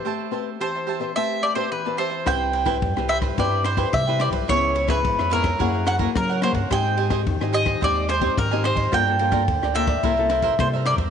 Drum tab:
RD |----------------|x-xxx-xxx-xxx-xx|x-xxx-xxx-xxx-xx|x-xxx-xxx-xxx-xx|
SD |----------------|r--r-r-r--r-r-r-|r--r-r-r--r-r-r-|r--r-r-r--r-r-r-|
BD |----------------|o--oo--oo--oo--o|o--oo--oo--oo--o|o--oo--oo--oo--o|

RD |x-xxx-xxx-xxx-xx|
SD |r--r-r-r--r-r-r-|
BD |o--oo--oo--oo--o|